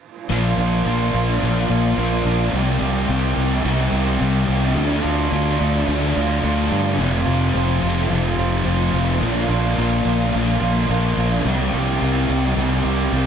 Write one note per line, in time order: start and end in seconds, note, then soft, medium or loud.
0.30 0.55 A#1 medium
0.30 0.86 A#2 medium
0.30 0.85 F3 medium
0.30 0.59 A#3 medium
0.30 0.58 D4 medium
0.30 0.57 F4 medium
0.58 0.83 A#1 medium
0.58 0.86 A#3 soft
0.58 0.86 D4 medium
0.58 0.88 F4 medium
0.85 1.11 A#1 medium
0.85 1.40 A#2 medium
0.85 1.41 F3 medium
0.85 1.16 A#3 medium
0.85 1.14 D4 medium
0.85 1.14 F4 medium
1.14 1.39 A#1 medium
1.14 1.41 A#3 medium
1.14 1.41 D4 medium
1.14 1.43 F4 medium
1.41 1.68 A#1 medium
1.41 1.97 A#2 medium
1.41 1.96 F3 medium
1.41 1.70 A#3 medium
1.41 1.69 D4 medium
1.41 1.69 F4 medium
1.69 1.95 A#1 medium
1.69 1.97 F3 soft
1.69 1.97 A#3 medium
1.69 1.97 D4 medium
1.69 1.98 F4 medium
1.96 2.23 A#1 medium
1.96 2.51 A#2 medium
1.96 2.54 F3 medium
1.96 2.26 A#3 medium
1.96 2.25 D4 medium
1.96 2.24 F4 medium
2.25 2.51 A#1 medium
2.25 2.52 A#3 medium
2.25 2.52 D4 medium
2.25 2.55 F4 medium
2.53 2.79 C2 medium
2.53 3.09 C3 medium
2.53 3.08 G3 medium
2.53 2.82 A#3 medium
2.53 3.10 C4 medium
2.53 2.82 E4 medium
2.53 2.81 G4 medium
2.81 3.07 C2 medium
2.81 3.09 A#3 medium
2.81 3.10 E4 medium
2.81 3.10 G4 medium
3.08 3.34 C2 medium
3.08 3.62 C3 medium
3.08 3.63 G3 medium
3.08 3.38 A#3 medium
3.08 3.65 C4 medium
3.08 3.37 E4 medium
3.08 3.36 G4 medium
3.37 3.62 C2 medium
3.37 3.64 A#3 medium
3.37 3.65 E4 medium
3.37 3.65 G4 medium
3.64 3.90 C2 medium
3.64 4.20 C3 medium
3.64 4.17 G3 medium
3.64 3.93 A#3 medium
3.64 3.92 C4 loud
3.64 3.92 E4 medium
3.64 3.91 G4 medium
3.92 4.18 C2 medium
3.92 4.20 G3 medium
3.92 4.18 A#3 medium
3.92 4.22 C4 medium
3.92 4.19 E4 medium
3.92 4.20 G4 medium
4.19 4.46 C2 medium
4.19 4.74 C3 medium
4.19 4.74 G3 medium
4.19 4.49 A#3 medium
4.19 4.77 C4 medium
4.19 4.49 E4 medium
4.19 4.48 G4 medium
4.48 4.74 C2 medium
4.48 4.76 A#3 medium
4.48 4.75 E4 medium
4.48 4.75 G4 medium
4.75 5.01 D2 medium
4.75 5.31 D3 medium
4.75 5.06 A3 medium
4.75 5.04 D4 medium
4.75 5.03 F4 medium
5.04 5.30 D2 medium
5.04 5.32 A3 medium
5.04 5.33 D4 medium
5.04 5.34 F4 medium
5.32 5.57 D2 medium
5.32 5.86 D3 medium
5.32 5.61 A3 medium
5.32 5.60 D4 medium
5.32 5.59 F4 medium
5.59 5.86 D2 medium
5.59 5.88 A3 medium
5.59 5.88 D4 medium
5.59 5.89 F4 medium
5.88 6.13 D2 medium
5.88 6.41 D3 medium
5.88 6.17 A3 medium
5.88 6.16 D4 medium
5.88 6.15 F4 medium
6.16 6.41 D2 medium
6.16 6.43 A3 medium
6.16 6.44 D4 medium
6.16 6.44 F4 medium
6.42 6.69 D2 medium
6.42 6.97 D3 medium
6.42 6.71 A3 medium
6.42 6.70 D4 medium
6.42 6.70 F4 medium
6.70 6.97 G2 medium
6.70 6.99 A3 soft
6.70 6.99 D4 medium
6.70 6.99 F4 medium
6.98 7.24 F1 medium
6.98 7.54 F2 medium
6.98 7.54 C3 medium
6.98 7.27 F3 medium
6.98 7.26 A3 medium
6.98 7.25 C4 medium
6.98 7.25 F4 medium
7.25 7.52 F1 medium
7.25 7.53 F3 soft
7.25 7.53 A3 medium
7.25 7.53 C4 medium
7.25 7.55 F4 medium
7.53 7.80 F1 medium
7.53 8.09 F2 medium
7.53 8.11 C3 medium
7.53 7.83 F3 medium
7.53 7.83 A3 medium
7.53 7.81 C4 medium
7.53 7.82 F4 medium
7.82 8.08 F1 medium
7.82 8.10 F3 soft
7.82 8.09 A3 medium
7.82 8.09 C4 medium
7.82 8.10 F4 medium
8.09 8.36 F1 medium
8.09 8.65 F2 medium
8.09 8.66 C3 medium
8.09 8.38 F3 medium
8.09 8.36 A3 medium
8.09 8.36 C4 medium
8.09 8.36 F4 medium
8.36 8.63 F1 medium
8.36 8.65 C3 medium
8.36 8.65 F3 medium
8.36 8.65 A3 medium
8.36 8.65 C4 medium
8.36 8.67 F4 medium
8.65 8.91 F1 medium
8.65 9.20 F2 medium
8.65 9.20 C3 medium
8.65 8.94 F3 medium
8.65 8.93 A3 medium
8.65 8.93 C4 medium
8.65 8.93 F4 medium
8.93 9.19 F1 medium
8.93 9.21 F3 medium
8.93 9.20 A3 medium
8.93 9.20 C4 medium
8.93 9.22 F4 medium
9.20 9.47 A#1 medium
9.20 9.77 A#2 medium
9.20 9.77 D3 medium
9.20 9.78 F3 medium
9.20 9.50 A#3 medium
9.20 9.49 D4 medium
9.20 9.48 F4 medium
9.49 9.74 A#1 medium
9.49 9.78 A#3 medium
9.49 9.78 D4 medium
9.49 9.80 F4 medium
9.77 10.03 A#1 medium
9.77 10.32 A#2 medium
9.77 10.32 D3 medium
9.77 10.34 F3 medium
9.77 10.07 A#3 medium
9.77 10.05 D4 medium
9.77 10.05 F4 medium
10.05 10.31 A#1 medium
10.05 10.32 A#3 medium
10.05 10.33 D4 medium
10.05 10.34 F4 medium
10.33 10.59 A#1 medium
10.33 10.89 A#2 medium
10.33 10.88 D3 medium
10.33 10.62 F3 medium
10.33 10.60 A#3 medium
10.33 10.60 D4 medium
10.33 10.60 F4 medium
10.60 10.86 A#1 medium
10.60 10.89 F3 soft
10.60 10.89 A#3 soft
10.60 10.90 D4 medium
10.60 10.91 F4 medium
10.88 11.14 A#1 medium
10.88 11.43 A#2 medium
10.88 11.43 D3 medium
10.88 11.45 F3 medium
10.88 11.18 A#3 medium
10.88 11.17 D4 medium
10.88 11.17 F4 medium
11.17 11.42 A#1 medium
11.17 11.44 A#3 soft
11.17 11.44 D4 medium
11.17 11.47 F4 medium
11.45 11.70 C2 medium
11.45 12.01 C3 medium
11.45 12.00 G3 medium
11.45 11.74 A#3 medium
11.45 12.03 C4 medium
11.45 11.73 E4 medium
11.45 11.72 G4 medium
11.73 11.98 C2 medium
11.73 12.00 A#3 medium
11.73 12.01 E4 medium
11.73 12.02 G4 medium
12.01 12.26 C2 medium
12.01 12.55 C3 medium
12.01 12.55 G3 medium
12.01 12.29 A#3 medium
12.01 12.58 C4 medium
12.01 12.28 E4 medium
12.01 12.27 G4 medium
12.28 12.54 C2 medium
12.28 12.56 A#3 medium
12.28 12.56 E4 medium
12.28 12.57 G4 medium
12.55 12.82 C2 medium
12.55 13.12 C3 medium
12.55 13.11 G3 medium
12.55 12.85 A#3 medium
12.55 12.84 C4 loud
12.55 12.84 E4 medium
12.55 12.83 G4 medium
12.85 13.10 C2 medium
12.85 13.13 G3 medium
12.85 13.13 A#3 medium
12.85 13.15 C4 medium
12.85 13.13 E4 medium
12.85 13.13 G4 medium
13.12 13.26 C2 medium
13.12 13.26 C3 medium
13.12 13.26 G3 medium
13.12 13.26 A#3 medium
13.12 13.26 C4 medium
13.12 13.26 E4 medium
13.12 13.26 G4 medium